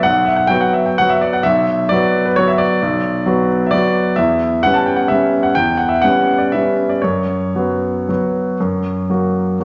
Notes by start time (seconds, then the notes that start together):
0.03 B1 F#5
0.25 E5
0.36 F#5
0.47 F#3 B3 F#4 G5
0.61 F#5
0.73 E5
0.86 G5
0.98 F#3 B3 F#4 F#5
1.09 E5
1.21 D5
1.33 F#5
1.43 B1 E5
1.89 F#3 B3 F#4 D5
2.25 B4
2.36 F#3 B3 F#4 C#5
2.48 E5
2.58 D5
2.82 B1
3.26 F#3 B3 F#4
3.66 E5
3.71 F#3 B3 F#4 D5
4.16 E2 E5
4.63 G3 B3 C#4 F#5
4.74 A5
4.86 G5
4.96 F#5
5.08 G3 B3 C#4 E5
5.43 F#5
5.55 E2 G5
5.77 F#5
5.89 E5
6.02 G3 B3 C#4 F#5
6.38 D5
6.52 G3 B3 C#4 E5
6.89 D5
7.02 F#2 C#5
7.55 F#3 B3 F#4
8.09 F#3 B3 F#4
8.60 F#2
9.10 F#3 A#3 F#4
9.60 F#3 A#3 F#4